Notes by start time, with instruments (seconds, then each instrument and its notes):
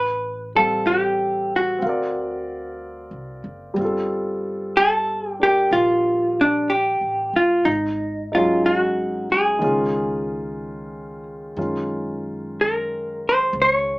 Already playing: upright bass A1, hollow-body jazz guitar B4
0.55 grand piano G3 C4 A4 F5, hollow-body jazz guitar A4
0.87 hollow-body jazz guitar G4
1.56 hollow-body jazz guitar F#4
1.78 upright bass D2, grand piano C4 F5
1.86 grand piano A#4 D5
3.11 upright bass C2
3.44 upright bass F#1
3.74 upright bass G1, grand piano G3 C4
3.81 grand piano F4
3.85 grand piano A4
4.77 hollow-body jazz guitar A4
5.31 hollow-body jazz guitar G4
5.40 grand piano D4 G4 A#4, hollow-body jazz guitar G4
5.71 upright bass A#1, hollow-body jazz guitar F4
6.41 hollow-body jazz guitar D4
6.70 hollow-body jazz guitar G4
7.01 upright bass A1
7.33 upright bass G1, hollow-body jazz guitar F4
7.65 upright bass G#1, hollow-body jazz guitar D#4
8.32 grand piano G#3 C#4 D#4, hollow-body jazz guitar F4
8.36 grand piano F#3
8.66 hollow-body jazz guitar F#4
9.30 upright bass D2, hollow-body jazz guitar G#4
9.59 upright bass C#2, grand piano D#3 G#3 C#4
9.64 grand piano F4
11.57 upright bass F#2, grand piano D#3 G#3 C#4 F4
12.61 hollow-body jazz guitar A#4
13.29 hollow-body jazz guitar C5
13.53 upright bass C#2
13.62 hollow-body jazz guitar C#5